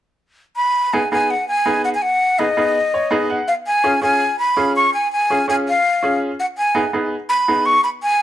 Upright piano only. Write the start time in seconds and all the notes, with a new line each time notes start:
0.93 B3 D#4 G#4
1.12 B3 D#4 G#4
1.66 B3 D#4 G#4
2.39 B3 D#4 G#4
2.57 B3 D#4 G#4
2.94 C#5
3.11 B3 D#4 G#4 D#5
3.30 F#5
3.84 C#4 F4 G#4
4.02 C#4 F4 G#4
4.57 C#4 F4 G#4
5.30 C#4 F4 G#4
5.48 C#4 F4 G#4
6.03 C#4 F4 G#4
6.75 B3 D#4 G#4
6.93 B3 D#4 G#4
7.48 B3 D#4 G#4